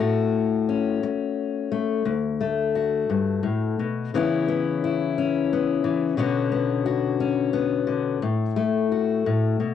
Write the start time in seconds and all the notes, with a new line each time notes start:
Already playing: A3
0.00 A2 F#4
0.69 C#4
1.03 muted steel-string acoustic guitar stroke
1.72 A3
2.05 D2
2.41 A3
2.76 F#4
3.10 G2
3.43 A2
3.79 B2
4.14 C#3 E3 B3 C#4 E4
4.48 B3
4.84 E4
5.18 C#4
5.53 B3
5.84 E3
6.17 B2 D3 B3 C#4 F#4
6.52 B3
6.86 F#4
7.20 C#4
7.53 B3
7.87 D3
8.22 A2
8.56 A3
8.92 F#4
9.26 A2
9.60 B2